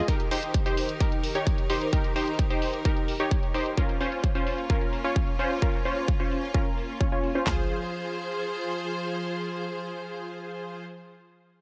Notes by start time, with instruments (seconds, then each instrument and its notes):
0.08 string section D#3 D#4 G4 A#4, supersaw synth D#4 G4 A#4, kick, closed hi-hat
0.20 closed hi-hat
0.31 supersaw synth D#4 G4 C5, open hi-hat
0.43 closed hi-hat
0.54 kick, closed hi-hat
0.66 supersaw synth D#4 G4 C5, closed hi-hat
0.77 open hi-hat
0.89 closed hi-hat
1.00 supersaw synth D#4 G4 A#4, kick, closed hi-hat
1.12 closed hi-hat
1.24 open hi-hat
1.35 supersaw synth D#4 G4 C#5, closed hi-hat
1.47 kick, closed hi-hat
1.58 closed hi-hat
1.70 supersaw synth D#4 G4 C5, open hi-hat
1.81 closed hi-hat
1.93 supersaw synth D#4 G4 A#4, kick, closed hi-hat
2.04 closed hi-hat
2.16 supersaw synth D#4 G4 C5, open hi-hat
2.27 closed hi-hat
2.39 kick, closed hi-hat
2.50 supersaw synth D#4 G4 C5, closed hi-hat
2.62 open hi-hat
2.74 closed hi-hat
2.85 supersaw synth D#4 G4 A#4, kick, closed hi-hat
2.97 closed hi-hat
3.08 open hi-hat
3.20 supersaw synth D#4 G4 C#5, closed hi-hat
3.31 kick, closed hi-hat
3.43 closed hi-hat
3.54 supersaw synth D#4 G4 C5, open hi-hat
3.66 closed hi-hat
3.77 string section A#3 C#4 F4, supersaw synth C#4 F4 A#4, kick, closed hi-hat
3.89 closed hi-hat
4.01 supersaw synth C#4 F4 C5, open hi-hat
4.12 closed hi-hat
4.24 kick, closed hi-hat
4.35 supersaw synth C#4 F4 C5, closed hi-hat
4.47 open hi-hat
4.58 closed hi-hat
4.70 supersaw synth C#4 F4 A#4, kick, closed hi-hat
4.81 closed hi-hat
4.93 open hi-hat
5.04 supersaw synth C#4 F4 C#5, closed hi-hat
5.16 kick, closed hi-hat
5.28 closed hi-hat
5.39 supersaw synth C#4 F4 C5, open hi-hat
5.51 closed hi-hat
5.62 supersaw synth C#4 F4 A#4, kick, closed hi-hat
5.74 closed hi-hat
5.85 supersaw synth C#4 F4 C5, open hi-hat
5.97 closed hi-hat
6.08 kick, closed hi-hat
6.20 supersaw synth C#4 F4 C5, closed hi-hat
6.31 open hi-hat
6.43 closed hi-hat
6.54 supersaw synth C#4 F4 A#4, kick, closed hi-hat
6.66 closed hi-hat
6.78 open hi-hat
6.89 closed hi-hat
7.01 supersaw synth C#4 F4 C#5, kick, closed hi-hat
7.12 supersaw synth C#4 F4 C#5, closed hi-hat
7.24 open hi-hat
7.35 supersaw synth C#4 F4 C5, closed hi-hat
7.47 string section F3 F4 G#4 C5, supersaw synth F4 G#4 C5, kick, clap, floor tom